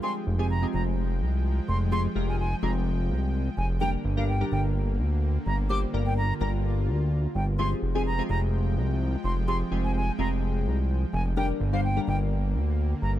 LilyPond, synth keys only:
\new Staff \with { instrumentName = "Synth keys" } { \time 4/4 \key f \dorian \tempo 4 = 127 <aes c' f' g' aes'>8 r16 <aes c' f' g' aes'>16 r16 <aes c' f' g' aes'>4~ <aes c' f' g' aes'>16 r4. | <aes c' f' g' aes'>16 r16 <aes c' f' g' bes'>8 r8 <aes c' f' g' aes'>4~ <aes c' f' g' aes'>16 r4 r16 | <g bes d' g' bes'>8 r16 <g bes d' g' bes'>16 r16 <g bes d' g' bes'>4~ <g bes d' g' bes'>16 r4. | <g bes d' g' c''>16 r16 <g bes d' g' bes'>8 r8 <g bes d' g' bes'>4~ <g bes d' g' bes'>16 r4 r16 |
<aes c' f' g' aes'>8 r16 <aes c' f' g' aes'>16 r16 <aes c' f' g' aes'>4~ <aes c' f' g' aes'>16 r4. | <aes c' f' g' aes'>16 r16 <aes c' f' g' aes'>8 r8 <aes c' f' g' aes'>4~ <aes c' f' g' aes'>16 r4 r16 | <g bes d' g' bes'>8 r16 <g bes d' g' c''>16 r16 <g bes d' g' bes'>4~ <g bes d' g' bes'>16 r4. | }